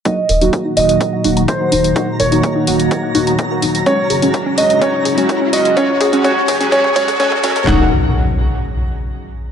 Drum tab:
HH |x-oxx-oxx-oxx-ox|x-oxx-oxx-oxx-ox|x-oxx-oxx-oxx-ox|x-oxx-oxx-oxx-ox|
CP |----------------|----------------|----------------|----------------|
SD |----------------|----------------|----------------|----------------|
BD |o---o---o---o---|o---o---o---o---|o---o---o---o---|o-o-o-o-oooooooo|

HH |----------------|
CP |x---------------|
SD |o---------------|
BD |----------------|